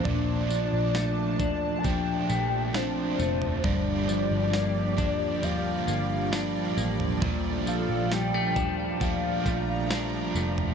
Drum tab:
TB |--x-x-x-x-x-x-x-|--x-x-x-x-x-x-x-|--x-x-x-x-x-x-x-|
SD |----o-------o---|----o-------o---|----o-------o---|
FT |o-----o-o------o|o-----o-o------o|o-----o-o------o|
BD |o-----o-o-------|o-----o---------|o-----o-o-o-----|